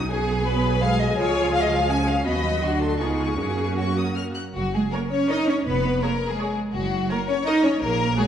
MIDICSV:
0, 0, Header, 1, 6, 480
1, 0, Start_track
1, 0, Key_signature, 6, "major"
1, 0, Tempo, 362100
1, 126, Time_signature, 3, 2, 24, 8
1, 3487, Tempo, 381679
1, 6847, Tempo, 360360
1, 10801, End_track
2, 0, Start_track
2, 0, Title_t, "Violin section"
2, 0, Program_c, 0, 48
2, 140, Note_on_c, 0, 80, 55
2, 2954, Note_off_c, 0, 80, 0
2, 3004, Note_on_c, 0, 83, 49
2, 3454, Note_off_c, 0, 83, 0
2, 3488, Note_on_c, 0, 84, 43
2, 3923, Note_off_c, 0, 84, 0
2, 3958, Note_on_c, 0, 85, 42
2, 4838, Note_off_c, 0, 85, 0
2, 4924, Note_on_c, 0, 85, 47
2, 5158, Note_off_c, 0, 85, 0
2, 5183, Note_on_c, 0, 87, 47
2, 5415, Note_on_c, 0, 89, 46
2, 5428, Note_off_c, 0, 87, 0
2, 5515, Note_off_c, 0, 89, 0
2, 5655, Note_on_c, 0, 90, 45
2, 5756, Note_off_c, 0, 90, 0
2, 5902, Note_on_c, 0, 66, 57
2, 6126, Note_off_c, 0, 66, 0
2, 6153, Note_on_c, 0, 68, 48
2, 6246, Note_off_c, 0, 68, 0
2, 6368, Note_on_c, 0, 70, 55
2, 6463, Note_off_c, 0, 70, 0
2, 6605, Note_on_c, 0, 73, 55
2, 6837, Note_off_c, 0, 73, 0
2, 6848, Note_on_c, 0, 75, 68
2, 7080, Note_on_c, 0, 73, 50
2, 7088, Note_off_c, 0, 75, 0
2, 7317, Note_on_c, 0, 71, 65
2, 7323, Note_off_c, 0, 73, 0
2, 7796, Note_off_c, 0, 71, 0
2, 7802, Note_on_c, 0, 70, 62
2, 8149, Note_on_c, 0, 68, 55
2, 8160, Note_off_c, 0, 70, 0
2, 8517, Note_off_c, 0, 68, 0
2, 8760, Note_on_c, 0, 66, 59
2, 9208, Note_off_c, 0, 66, 0
2, 9243, Note_on_c, 0, 70, 64
2, 9485, Note_off_c, 0, 70, 0
2, 9487, Note_on_c, 0, 73, 64
2, 9583, Note_off_c, 0, 73, 0
2, 9732, Note_on_c, 0, 75, 72
2, 9826, Note_off_c, 0, 75, 0
2, 9960, Note_on_c, 0, 73, 61
2, 10196, Note_off_c, 0, 73, 0
2, 10216, Note_on_c, 0, 70, 77
2, 10681, Note_off_c, 0, 70, 0
2, 10686, Note_on_c, 0, 68, 72
2, 10801, Note_off_c, 0, 68, 0
2, 10801, End_track
3, 0, Start_track
3, 0, Title_t, "Violin section"
3, 0, Program_c, 1, 48
3, 140, Note_on_c, 1, 68, 72
3, 578, Note_off_c, 1, 68, 0
3, 618, Note_on_c, 1, 71, 77
3, 1085, Note_on_c, 1, 77, 84
3, 1090, Note_off_c, 1, 71, 0
3, 1324, Note_off_c, 1, 77, 0
3, 1324, Note_on_c, 1, 75, 65
3, 1564, Note_off_c, 1, 75, 0
3, 1575, Note_on_c, 1, 73, 78
3, 2038, Note_off_c, 1, 73, 0
3, 2039, Note_on_c, 1, 77, 77
3, 2129, Note_off_c, 1, 77, 0
3, 2139, Note_on_c, 1, 75, 61
3, 2226, Note_off_c, 1, 75, 0
3, 2228, Note_on_c, 1, 77, 70
3, 2514, Note_on_c, 1, 80, 72
3, 2522, Note_off_c, 1, 77, 0
3, 2756, Note_off_c, 1, 80, 0
3, 2756, Note_on_c, 1, 77, 65
3, 2999, Note_off_c, 1, 77, 0
3, 3005, Note_on_c, 1, 75, 74
3, 3479, Note_off_c, 1, 75, 0
3, 3490, Note_on_c, 1, 66, 63
3, 3713, Note_on_c, 1, 69, 59
3, 3720, Note_off_c, 1, 66, 0
3, 3952, Note_off_c, 1, 69, 0
3, 3953, Note_on_c, 1, 68, 49
3, 4419, Note_off_c, 1, 68, 0
3, 4434, Note_on_c, 1, 68, 53
3, 4921, Note_off_c, 1, 68, 0
3, 4936, Note_on_c, 1, 66, 44
3, 5428, Note_off_c, 1, 66, 0
3, 5913, Note_on_c, 1, 66, 54
3, 6132, Note_off_c, 1, 66, 0
3, 6147, Note_on_c, 1, 68, 53
3, 6374, Note_on_c, 1, 70, 57
3, 6380, Note_off_c, 1, 68, 0
3, 6601, Note_on_c, 1, 73, 59
3, 6609, Note_off_c, 1, 70, 0
3, 6835, Note_off_c, 1, 73, 0
3, 6845, Note_on_c, 1, 75, 62
3, 7090, Note_on_c, 1, 73, 49
3, 7092, Note_off_c, 1, 75, 0
3, 7187, Note_off_c, 1, 73, 0
3, 7329, Note_on_c, 1, 71, 62
3, 7799, Note_on_c, 1, 70, 55
3, 7802, Note_off_c, 1, 71, 0
3, 8165, Note_on_c, 1, 68, 51
3, 8166, Note_off_c, 1, 70, 0
3, 8526, Note_off_c, 1, 68, 0
3, 8767, Note_on_c, 1, 66, 58
3, 9212, Note_off_c, 1, 66, 0
3, 9249, Note_on_c, 1, 70, 65
3, 9344, Note_off_c, 1, 70, 0
3, 9490, Note_on_c, 1, 73, 70
3, 9719, Note_on_c, 1, 75, 77
3, 9723, Note_off_c, 1, 73, 0
3, 9954, Note_on_c, 1, 73, 64
3, 9961, Note_off_c, 1, 75, 0
3, 10198, Note_off_c, 1, 73, 0
3, 10201, Note_on_c, 1, 70, 71
3, 10673, Note_off_c, 1, 70, 0
3, 10677, Note_on_c, 1, 68, 74
3, 10801, Note_off_c, 1, 68, 0
3, 10801, End_track
4, 0, Start_track
4, 0, Title_t, "Viola section"
4, 0, Program_c, 2, 48
4, 130, Note_on_c, 2, 54, 55
4, 132, Note_on_c, 2, 68, 62
4, 1512, Note_off_c, 2, 54, 0
4, 1562, Note_on_c, 2, 53, 58
4, 2947, Note_off_c, 2, 53, 0
4, 2950, Note_off_c, 2, 68, 0
4, 2998, Note_on_c, 2, 54, 51
4, 3002, Note_on_c, 2, 66, 46
4, 3904, Note_off_c, 2, 54, 0
4, 3905, Note_off_c, 2, 66, 0
4, 3948, Note_on_c, 2, 59, 39
4, 3950, Note_on_c, 2, 65, 35
4, 4406, Note_off_c, 2, 59, 0
4, 4407, Note_off_c, 2, 65, 0
4, 4429, Note_on_c, 2, 58, 40
4, 4431, Note_on_c, 2, 66, 41
4, 5617, Note_off_c, 2, 58, 0
4, 5618, Note_off_c, 2, 66, 0
4, 6386, Note_on_c, 2, 70, 38
4, 6389, Note_on_c, 2, 73, 41
4, 6486, Note_off_c, 2, 70, 0
4, 6489, Note_off_c, 2, 73, 0
4, 6833, Note_on_c, 2, 73, 43
4, 6838, Note_on_c, 2, 70, 42
4, 6939, Note_off_c, 2, 73, 0
4, 6944, Note_off_c, 2, 70, 0
4, 7809, Note_on_c, 2, 73, 43
4, 7813, Note_on_c, 2, 68, 43
4, 7915, Note_off_c, 2, 73, 0
4, 7919, Note_off_c, 2, 68, 0
4, 8294, Note_on_c, 2, 68, 43
4, 8300, Note_on_c, 2, 73, 44
4, 8400, Note_off_c, 2, 68, 0
4, 8407, Note_off_c, 2, 73, 0
4, 9249, Note_on_c, 2, 70, 48
4, 9250, Note_on_c, 2, 73, 45
4, 9356, Note_off_c, 2, 70, 0
4, 9356, Note_off_c, 2, 73, 0
4, 9724, Note_on_c, 2, 73, 47
4, 9726, Note_on_c, 2, 70, 49
4, 9831, Note_off_c, 2, 73, 0
4, 9832, Note_off_c, 2, 70, 0
4, 10674, Note_on_c, 2, 73, 50
4, 10675, Note_on_c, 2, 66, 57
4, 10780, Note_off_c, 2, 73, 0
4, 10782, Note_off_c, 2, 66, 0
4, 10801, End_track
5, 0, Start_track
5, 0, Title_t, "Cello section"
5, 0, Program_c, 3, 48
5, 124, Note_on_c, 3, 59, 60
5, 1064, Note_off_c, 3, 59, 0
5, 1087, Note_on_c, 3, 56, 61
5, 1555, Note_off_c, 3, 56, 0
5, 1560, Note_on_c, 3, 65, 61
5, 2498, Note_off_c, 3, 65, 0
5, 2522, Note_on_c, 3, 61, 58
5, 2992, Note_off_c, 3, 61, 0
5, 3003, Note_on_c, 3, 59, 51
5, 3479, Note_on_c, 3, 62, 45
5, 3487, Note_off_c, 3, 59, 0
5, 3942, Note_off_c, 3, 62, 0
5, 3955, Note_on_c, 3, 63, 51
5, 4440, Note_on_c, 3, 61, 44
5, 4444, Note_off_c, 3, 63, 0
5, 5672, Note_off_c, 3, 61, 0
5, 5915, Note_on_c, 3, 54, 67
5, 6009, Note_off_c, 3, 54, 0
5, 6151, Note_on_c, 3, 56, 63
5, 6244, Note_off_c, 3, 56, 0
5, 6372, Note_on_c, 3, 58, 63
5, 6466, Note_off_c, 3, 58, 0
5, 6602, Note_on_c, 3, 61, 69
5, 6832, Note_on_c, 3, 63, 86
5, 6835, Note_off_c, 3, 61, 0
5, 7083, Note_on_c, 3, 61, 68
5, 7085, Note_off_c, 3, 63, 0
5, 7327, Note_on_c, 3, 59, 72
5, 7330, Note_off_c, 3, 61, 0
5, 7801, Note_off_c, 3, 59, 0
5, 7814, Note_on_c, 3, 58, 59
5, 7921, Note_off_c, 3, 58, 0
5, 8171, Note_on_c, 3, 56, 59
5, 8522, Note_off_c, 3, 56, 0
5, 8763, Note_on_c, 3, 54, 69
5, 9209, Note_off_c, 3, 54, 0
5, 9245, Note_on_c, 3, 58, 68
5, 9481, Note_on_c, 3, 61, 75
5, 9485, Note_off_c, 3, 58, 0
5, 9578, Note_off_c, 3, 61, 0
5, 9708, Note_on_c, 3, 63, 99
5, 9950, Note_off_c, 3, 63, 0
5, 9955, Note_on_c, 3, 61, 79
5, 10189, Note_on_c, 3, 58, 79
5, 10199, Note_off_c, 3, 61, 0
5, 10667, Note_off_c, 3, 58, 0
5, 10680, Note_on_c, 3, 56, 67
5, 10786, Note_off_c, 3, 56, 0
5, 10801, End_track
6, 0, Start_track
6, 0, Title_t, "Double bass section"
6, 0, Program_c, 4, 48
6, 136, Note_on_c, 4, 35, 60
6, 1515, Note_off_c, 4, 35, 0
6, 1571, Note_on_c, 4, 37, 55
6, 2975, Note_off_c, 4, 37, 0
6, 2992, Note_on_c, 4, 39, 49
6, 3472, Note_off_c, 4, 39, 0
6, 3478, Note_on_c, 4, 38, 48
6, 3948, Note_on_c, 4, 37, 43
6, 3951, Note_off_c, 4, 38, 0
6, 4434, Note_on_c, 4, 42, 44
6, 4440, Note_off_c, 4, 37, 0
6, 5670, Note_off_c, 4, 42, 0
6, 5917, Note_on_c, 4, 30, 53
6, 6305, Note_off_c, 4, 30, 0
6, 7338, Note_on_c, 4, 29, 59
6, 7736, Note_off_c, 4, 29, 0
6, 8764, Note_on_c, 4, 30, 62
6, 9163, Note_off_c, 4, 30, 0
6, 10194, Note_on_c, 4, 34, 67
6, 10599, Note_off_c, 4, 34, 0
6, 10801, End_track
0, 0, End_of_file